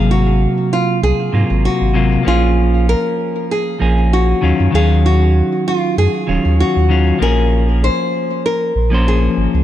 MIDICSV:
0, 0, Header, 1, 4, 480
1, 0, Start_track
1, 0, Key_signature, -5, "minor"
1, 0, Tempo, 618557
1, 1755, Time_signature, 4, 2, 24, 8
1, 7478, End_track
2, 0, Start_track
2, 0, Title_t, "Nylon-string guitar"
2, 0, Program_c, 0, 24
2, 0, Note_on_c, 0, 68, 97
2, 81, Note_off_c, 0, 68, 0
2, 85, Note_on_c, 0, 66, 93
2, 529, Note_off_c, 0, 66, 0
2, 565, Note_on_c, 0, 65, 90
2, 783, Note_off_c, 0, 65, 0
2, 802, Note_on_c, 0, 68, 92
2, 1279, Note_off_c, 0, 68, 0
2, 1282, Note_on_c, 0, 66, 92
2, 1764, Note_off_c, 0, 66, 0
2, 1767, Note_on_c, 0, 65, 89
2, 2210, Note_off_c, 0, 65, 0
2, 2243, Note_on_c, 0, 70, 100
2, 2688, Note_off_c, 0, 70, 0
2, 2727, Note_on_c, 0, 68, 89
2, 3170, Note_off_c, 0, 68, 0
2, 3207, Note_on_c, 0, 66, 89
2, 3546, Note_off_c, 0, 66, 0
2, 3685, Note_on_c, 0, 68, 103
2, 3921, Note_off_c, 0, 68, 0
2, 3924, Note_on_c, 0, 66, 91
2, 4402, Note_off_c, 0, 66, 0
2, 4406, Note_on_c, 0, 65, 94
2, 4624, Note_off_c, 0, 65, 0
2, 4643, Note_on_c, 0, 68, 90
2, 5122, Note_off_c, 0, 68, 0
2, 5125, Note_on_c, 0, 66, 101
2, 5569, Note_off_c, 0, 66, 0
2, 5605, Note_on_c, 0, 70, 104
2, 6080, Note_off_c, 0, 70, 0
2, 6083, Note_on_c, 0, 72, 109
2, 6528, Note_off_c, 0, 72, 0
2, 6563, Note_on_c, 0, 70, 99
2, 7008, Note_off_c, 0, 70, 0
2, 7046, Note_on_c, 0, 68, 91
2, 7385, Note_off_c, 0, 68, 0
2, 7478, End_track
3, 0, Start_track
3, 0, Title_t, "Clean electric guitar"
3, 0, Program_c, 1, 27
3, 0, Note_on_c, 1, 48, 86
3, 0, Note_on_c, 1, 54, 85
3, 0, Note_on_c, 1, 58, 76
3, 0, Note_on_c, 1, 77, 94
3, 999, Note_off_c, 1, 48, 0
3, 1005, Note_off_c, 1, 54, 0
3, 1011, Note_off_c, 1, 58, 0
3, 1016, Note_off_c, 1, 77, 0
3, 1028, Note_on_c, 1, 48, 76
3, 1034, Note_on_c, 1, 54, 70
3, 1039, Note_on_c, 1, 58, 71
3, 1044, Note_on_c, 1, 65, 85
3, 1485, Note_off_c, 1, 48, 0
3, 1488, Note_off_c, 1, 54, 0
3, 1490, Note_off_c, 1, 58, 0
3, 1493, Note_off_c, 1, 65, 0
3, 1503, Note_on_c, 1, 48, 97
3, 1508, Note_on_c, 1, 54, 90
3, 1514, Note_on_c, 1, 58, 88
3, 1521, Note_on_c, 1, 65, 108
3, 1723, Note_off_c, 1, 48, 0
3, 1725, Note_off_c, 1, 54, 0
3, 1728, Note_off_c, 1, 58, 0
3, 1731, Note_off_c, 1, 65, 0
3, 1731, Note_on_c, 1, 53, 85
3, 1744, Note_on_c, 1, 58, 78
3, 1754, Note_on_c, 1, 61, 79
3, 1766, Note_on_c, 1, 68, 98
3, 2917, Note_off_c, 1, 53, 0
3, 2923, Note_off_c, 1, 58, 0
3, 2928, Note_off_c, 1, 61, 0
3, 2934, Note_off_c, 1, 68, 0
3, 2945, Note_on_c, 1, 53, 77
3, 2951, Note_on_c, 1, 58, 76
3, 2958, Note_on_c, 1, 61, 69
3, 2962, Note_on_c, 1, 68, 82
3, 3403, Note_off_c, 1, 53, 0
3, 3407, Note_off_c, 1, 58, 0
3, 3410, Note_off_c, 1, 61, 0
3, 3412, Note_off_c, 1, 68, 0
3, 3424, Note_on_c, 1, 51, 98
3, 3431, Note_on_c, 1, 54, 88
3, 3436, Note_on_c, 1, 61, 92
3, 3442, Note_on_c, 1, 65, 103
3, 3643, Note_off_c, 1, 51, 0
3, 3647, Note_off_c, 1, 54, 0
3, 3649, Note_off_c, 1, 61, 0
3, 3652, Note_off_c, 1, 65, 0
3, 3654, Note_on_c, 1, 51, 91
3, 3665, Note_on_c, 1, 54, 87
3, 3676, Note_on_c, 1, 61, 77
3, 3688, Note_on_c, 1, 77, 105
3, 4838, Note_off_c, 1, 51, 0
3, 4844, Note_off_c, 1, 54, 0
3, 4849, Note_off_c, 1, 61, 0
3, 4855, Note_off_c, 1, 77, 0
3, 4865, Note_on_c, 1, 51, 79
3, 4870, Note_on_c, 1, 54, 72
3, 4876, Note_on_c, 1, 61, 70
3, 4882, Note_on_c, 1, 65, 88
3, 5324, Note_off_c, 1, 51, 0
3, 5326, Note_off_c, 1, 54, 0
3, 5329, Note_off_c, 1, 61, 0
3, 5332, Note_off_c, 1, 65, 0
3, 5346, Note_on_c, 1, 51, 95
3, 5351, Note_on_c, 1, 54, 95
3, 5357, Note_on_c, 1, 61, 91
3, 5361, Note_on_c, 1, 65, 116
3, 5564, Note_off_c, 1, 51, 0
3, 5567, Note_off_c, 1, 54, 0
3, 5570, Note_off_c, 1, 61, 0
3, 5572, Note_off_c, 1, 65, 0
3, 5578, Note_on_c, 1, 53, 90
3, 5590, Note_on_c, 1, 58, 85
3, 5601, Note_on_c, 1, 61, 83
3, 5613, Note_on_c, 1, 68, 100
3, 6760, Note_off_c, 1, 53, 0
3, 6766, Note_off_c, 1, 58, 0
3, 6772, Note_off_c, 1, 61, 0
3, 6778, Note_off_c, 1, 68, 0
3, 6908, Note_on_c, 1, 53, 97
3, 6919, Note_on_c, 1, 58, 90
3, 6929, Note_on_c, 1, 61, 82
3, 6940, Note_on_c, 1, 72, 107
3, 7478, Note_off_c, 1, 53, 0
3, 7478, Note_off_c, 1, 58, 0
3, 7478, Note_off_c, 1, 61, 0
3, 7478, Note_off_c, 1, 72, 0
3, 7478, End_track
4, 0, Start_track
4, 0, Title_t, "Sub bass"
4, 0, Program_c, 2, 38
4, 0, Note_on_c, 2, 32, 104
4, 368, Note_off_c, 2, 32, 0
4, 797, Note_on_c, 2, 36, 90
4, 878, Note_off_c, 2, 36, 0
4, 1035, Note_on_c, 2, 44, 98
4, 1117, Note_off_c, 2, 44, 0
4, 1166, Note_on_c, 2, 32, 91
4, 1309, Note_off_c, 2, 32, 0
4, 1405, Note_on_c, 2, 32, 85
4, 1690, Note_off_c, 2, 32, 0
4, 1757, Note_on_c, 2, 34, 98
4, 2289, Note_off_c, 2, 34, 0
4, 2956, Note_on_c, 2, 34, 95
4, 3370, Note_off_c, 2, 34, 0
4, 3437, Note_on_c, 2, 39, 81
4, 3518, Note_off_c, 2, 39, 0
4, 3567, Note_on_c, 2, 42, 94
4, 3635, Note_off_c, 2, 42, 0
4, 3677, Note_on_c, 2, 39, 106
4, 4209, Note_off_c, 2, 39, 0
4, 4637, Note_on_c, 2, 42, 95
4, 4718, Note_off_c, 2, 42, 0
4, 4878, Note_on_c, 2, 27, 96
4, 4958, Note_off_c, 2, 27, 0
4, 5006, Note_on_c, 2, 39, 89
4, 5149, Note_off_c, 2, 39, 0
4, 5248, Note_on_c, 2, 39, 88
4, 5531, Note_off_c, 2, 39, 0
4, 5596, Note_on_c, 2, 34, 104
4, 6128, Note_off_c, 2, 34, 0
4, 6793, Note_on_c, 2, 34, 92
4, 7209, Note_off_c, 2, 34, 0
4, 7273, Note_on_c, 2, 32, 80
4, 7356, Note_off_c, 2, 32, 0
4, 7403, Note_on_c, 2, 37, 91
4, 7473, Note_off_c, 2, 37, 0
4, 7478, End_track
0, 0, End_of_file